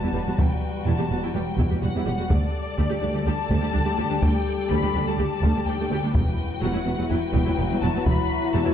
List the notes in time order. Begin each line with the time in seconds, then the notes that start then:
Already playing: F#3 G3 F#4 B4 A5
0.03 E2 G3 E4
0.14 E1 E2 G3 G4
0.27 E2 G3 F#4
0.38 E1 E2 G3 E4 G5, taiko
0.86 E1 E2 G3 E4 A5
0.99 E2 G3 G4
1.11 E1 E2 G3 F#4
1.23 E2 G3 E4 G5
1.35 E1 E2 G3 G4 G5
1.58 E1 E2 G3 E4, taiko
1.70 E2 G3 G4
1.82 E1 E2 G3 F#4 F#5
1.94 E2 G3 E4
2.06 E1 E2 G3 G4
2.19 E2 G3 F#4
2.30 D2 G3 A3 G4 A4 D5, taiko
2.78 D2 G3 A3
2.90 D2 G3 G4
3.02 D2 G3 D4
3.14 D2 G3 A3
3.26 D2 G3 G4 A5
3.50 D2 G3 A3, taiko
3.62 D2 G3 G4
3.72 D2 G3 D4
3.85 D2 G3 A3
3.98 D2 G3 G4
4.10 D2 G3 D4
4.22 D2 G3 A3 G5, taiko
4.69 D2 G3 A3 B5
4.83 D2 G3 G4
4.95 D2 G3 D4
5.05 D2 G3 A3 A5
5.19 D2 G3 G4 A5
5.43 D2 G3 A3, taiko
5.56 D2 G3 G4
5.66 D2 G3 D4 G5
5.80 D2 G3 A3
5.91 D2 G3 G4
6.03 D2 G3 D4
6.14 E1 E2 F#3 G3 E4 F#4 B4 G5, taiko
6.63 E1 E2 F#3 G3 F#5
6.74 E2 F#3 E4
6.86 E1 E2 F#3 B3
6.98 E2 F#3 G3
7.10 E1 E2 F#3 E4 G5
7.33 E1 E2 F#3 G3, taiko
7.46 E2 F#3 E4
7.58 E1 E2 F#3 B3
7.71 E2 F#3 G3
7.82 E1 E2 F#3 E4 A5
7.96 E2 F#3 B3
8.06 E1 E2 F#3 G3 B5, taiko
8.55 E1 E2 F#3 G3 A5
8.66 E2 F#3 E4